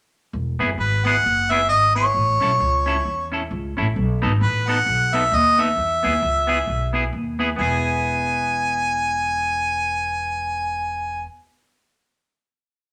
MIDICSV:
0, 0, Header, 1, 5, 480
1, 0, Start_track
1, 0, Key_signature, 4, "major"
1, 0, Tempo, 453172
1, 350, Time_signature, 4, 2, 24, 8
1, 13690, End_track
2, 0, Start_track
2, 0, Title_t, "Harmonica"
2, 0, Program_c, 0, 22
2, 850, Note_on_c, 0, 71, 93
2, 1127, Note_on_c, 0, 78, 107
2, 1143, Note_off_c, 0, 71, 0
2, 1598, Note_on_c, 0, 76, 95
2, 1614, Note_off_c, 0, 78, 0
2, 1782, Note_off_c, 0, 76, 0
2, 1789, Note_on_c, 0, 75, 101
2, 2057, Note_off_c, 0, 75, 0
2, 2075, Note_on_c, 0, 73, 78
2, 3473, Note_off_c, 0, 73, 0
2, 4687, Note_on_c, 0, 71, 91
2, 4975, Note_on_c, 0, 78, 103
2, 4991, Note_off_c, 0, 71, 0
2, 5460, Note_on_c, 0, 76, 92
2, 5476, Note_off_c, 0, 78, 0
2, 5666, Note_on_c, 0, 75, 100
2, 5682, Note_off_c, 0, 76, 0
2, 5941, Note_on_c, 0, 76, 89
2, 5957, Note_off_c, 0, 75, 0
2, 7366, Note_off_c, 0, 76, 0
2, 8040, Note_on_c, 0, 80, 86
2, 11911, Note_off_c, 0, 80, 0
2, 13690, End_track
3, 0, Start_track
3, 0, Title_t, "Clean electric guitar"
3, 0, Program_c, 1, 27
3, 628, Note_on_c, 1, 59, 84
3, 635, Note_on_c, 1, 64, 91
3, 640, Note_on_c, 1, 68, 97
3, 729, Note_off_c, 1, 59, 0
3, 733, Note_off_c, 1, 64, 0
3, 735, Note_off_c, 1, 68, 0
3, 1109, Note_on_c, 1, 59, 92
3, 1123, Note_on_c, 1, 64, 88
3, 1129, Note_on_c, 1, 68, 95
3, 1210, Note_off_c, 1, 59, 0
3, 1217, Note_off_c, 1, 64, 0
3, 1220, Note_off_c, 1, 68, 0
3, 1593, Note_on_c, 1, 59, 78
3, 1601, Note_on_c, 1, 64, 87
3, 1609, Note_on_c, 1, 68, 89
3, 1692, Note_off_c, 1, 59, 0
3, 1696, Note_off_c, 1, 64, 0
3, 1700, Note_off_c, 1, 68, 0
3, 2068, Note_on_c, 1, 59, 77
3, 2077, Note_on_c, 1, 64, 82
3, 2087, Note_on_c, 1, 68, 80
3, 2170, Note_off_c, 1, 59, 0
3, 2174, Note_off_c, 1, 64, 0
3, 2179, Note_off_c, 1, 68, 0
3, 2547, Note_on_c, 1, 61, 87
3, 2558, Note_on_c, 1, 64, 81
3, 2566, Note_on_c, 1, 69, 94
3, 2649, Note_off_c, 1, 61, 0
3, 2654, Note_off_c, 1, 64, 0
3, 2659, Note_off_c, 1, 69, 0
3, 3028, Note_on_c, 1, 61, 86
3, 3043, Note_on_c, 1, 64, 97
3, 3048, Note_on_c, 1, 69, 90
3, 3130, Note_off_c, 1, 61, 0
3, 3137, Note_off_c, 1, 64, 0
3, 3139, Note_off_c, 1, 69, 0
3, 3513, Note_on_c, 1, 61, 71
3, 3524, Note_on_c, 1, 64, 82
3, 3532, Note_on_c, 1, 69, 83
3, 3611, Note_off_c, 1, 61, 0
3, 3617, Note_off_c, 1, 64, 0
3, 3621, Note_off_c, 1, 69, 0
3, 3991, Note_on_c, 1, 61, 78
3, 4002, Note_on_c, 1, 64, 88
3, 4007, Note_on_c, 1, 69, 82
3, 4090, Note_off_c, 1, 61, 0
3, 4096, Note_off_c, 1, 64, 0
3, 4098, Note_off_c, 1, 69, 0
3, 4467, Note_on_c, 1, 59, 92
3, 4469, Note_on_c, 1, 63, 94
3, 4482, Note_on_c, 1, 69, 103
3, 4568, Note_off_c, 1, 59, 0
3, 4569, Note_off_c, 1, 63, 0
3, 4575, Note_off_c, 1, 69, 0
3, 4954, Note_on_c, 1, 59, 91
3, 4961, Note_on_c, 1, 63, 95
3, 4971, Note_on_c, 1, 69, 98
3, 5051, Note_off_c, 1, 59, 0
3, 5055, Note_off_c, 1, 63, 0
3, 5060, Note_off_c, 1, 69, 0
3, 5436, Note_on_c, 1, 59, 90
3, 5447, Note_on_c, 1, 63, 85
3, 5455, Note_on_c, 1, 69, 92
3, 5532, Note_off_c, 1, 59, 0
3, 5537, Note_off_c, 1, 63, 0
3, 5541, Note_off_c, 1, 69, 0
3, 5912, Note_on_c, 1, 59, 85
3, 5920, Note_on_c, 1, 63, 81
3, 5925, Note_on_c, 1, 69, 88
3, 6009, Note_off_c, 1, 59, 0
3, 6014, Note_off_c, 1, 63, 0
3, 6016, Note_off_c, 1, 69, 0
3, 6385, Note_on_c, 1, 59, 70
3, 6397, Note_on_c, 1, 64, 83
3, 6402, Note_on_c, 1, 68, 80
3, 6486, Note_off_c, 1, 59, 0
3, 6492, Note_off_c, 1, 64, 0
3, 6494, Note_off_c, 1, 68, 0
3, 6854, Note_on_c, 1, 59, 84
3, 6866, Note_on_c, 1, 64, 95
3, 6873, Note_on_c, 1, 68, 111
3, 6960, Note_off_c, 1, 59, 0
3, 6966, Note_off_c, 1, 64, 0
3, 6969, Note_off_c, 1, 68, 0
3, 7339, Note_on_c, 1, 59, 72
3, 7349, Note_on_c, 1, 64, 82
3, 7358, Note_on_c, 1, 68, 91
3, 7442, Note_off_c, 1, 59, 0
3, 7447, Note_off_c, 1, 64, 0
3, 7452, Note_off_c, 1, 68, 0
3, 7828, Note_on_c, 1, 59, 79
3, 7833, Note_on_c, 1, 64, 85
3, 7842, Note_on_c, 1, 68, 97
3, 7926, Note_off_c, 1, 59, 0
3, 7929, Note_off_c, 1, 64, 0
3, 7934, Note_off_c, 1, 68, 0
3, 8010, Note_on_c, 1, 59, 76
3, 8039, Note_on_c, 1, 64, 81
3, 8060, Note_on_c, 1, 68, 83
3, 11924, Note_off_c, 1, 59, 0
3, 11953, Note_off_c, 1, 64, 0
3, 11973, Note_off_c, 1, 68, 0
3, 13690, End_track
4, 0, Start_track
4, 0, Title_t, "Upright bass"
4, 0, Program_c, 2, 32
4, 353, Note_on_c, 2, 28, 99
4, 596, Note_off_c, 2, 28, 0
4, 639, Note_on_c, 2, 30, 79
4, 802, Note_off_c, 2, 30, 0
4, 823, Note_on_c, 2, 32, 82
4, 1234, Note_off_c, 2, 32, 0
4, 1307, Note_on_c, 2, 30, 85
4, 1792, Note_off_c, 2, 30, 0
4, 1792, Note_on_c, 2, 32, 98
4, 2199, Note_off_c, 2, 32, 0
4, 2267, Note_on_c, 2, 33, 93
4, 2513, Note_off_c, 2, 33, 0
4, 2557, Note_on_c, 2, 35, 85
4, 2721, Note_off_c, 2, 35, 0
4, 2752, Note_on_c, 2, 37, 93
4, 3159, Note_off_c, 2, 37, 0
4, 3232, Note_on_c, 2, 40, 83
4, 3638, Note_off_c, 2, 40, 0
4, 3715, Note_on_c, 2, 37, 92
4, 3956, Note_off_c, 2, 37, 0
4, 4000, Note_on_c, 2, 33, 88
4, 4162, Note_off_c, 2, 33, 0
4, 4195, Note_on_c, 2, 35, 101
4, 4436, Note_off_c, 2, 35, 0
4, 4488, Note_on_c, 2, 32, 93
4, 4646, Note_off_c, 2, 32, 0
4, 4671, Note_on_c, 2, 33, 87
4, 5077, Note_off_c, 2, 33, 0
4, 5149, Note_on_c, 2, 35, 90
4, 5556, Note_off_c, 2, 35, 0
4, 5634, Note_on_c, 2, 39, 99
4, 6038, Note_off_c, 2, 39, 0
4, 6108, Note_on_c, 2, 40, 89
4, 6351, Note_off_c, 2, 40, 0
4, 6399, Note_on_c, 2, 39, 98
4, 6560, Note_off_c, 2, 39, 0
4, 6593, Note_on_c, 2, 37, 86
4, 6998, Note_off_c, 2, 37, 0
4, 7068, Note_on_c, 2, 35, 92
4, 7474, Note_off_c, 2, 35, 0
4, 7549, Note_on_c, 2, 39, 88
4, 7955, Note_off_c, 2, 39, 0
4, 8036, Note_on_c, 2, 28, 97
4, 11907, Note_off_c, 2, 28, 0
4, 13690, End_track
5, 0, Start_track
5, 0, Title_t, "Muted clean electric guitar strokes"
5, 824, Note_on_c, 9, 29, 37
5, 930, Note_off_c, 9, 29, 0
5, 2752, Note_on_c, 9, 29, 47
5, 2858, Note_off_c, 9, 29, 0
5, 4664, Note_on_c, 9, 29, 37
5, 4770, Note_off_c, 9, 29, 0
5, 6582, Note_on_c, 9, 29, 50
5, 6687, Note_off_c, 9, 29, 0
5, 13690, End_track
0, 0, End_of_file